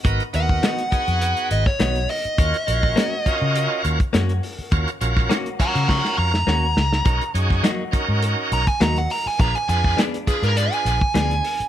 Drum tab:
HH |xxx-xxxxxxx-xxox|xxx-x-x-x-xxxxo-|xxx-xxxx--------|xxx-x-x-x-xxxxo-|
SD |----o------oo---|----o-------o---|---oo---oo-oo-oo|---oo-------o---|
BD |o--o--o----o----|o--o--o----o----|o--o--o-o-------|o--o--o----o----|

HH |xxx-xxxxxxx-xxox|
SD |----o-------o---|
BD |o--o--o----o----|